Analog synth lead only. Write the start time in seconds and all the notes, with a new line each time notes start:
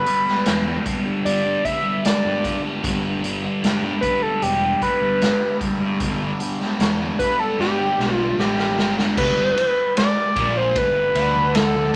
Already playing: B4
1.25 D5
1.65 E5
2.06 D5
4.01 B4
4.22 A4
4.43 G4
4.83 B4
7.19 B4
7.39 A4
7.60 G4
8.14 F4
8.40 G4
9.18 B4
9.98 D5
10.57 C5
10.77 B4
11.55 A4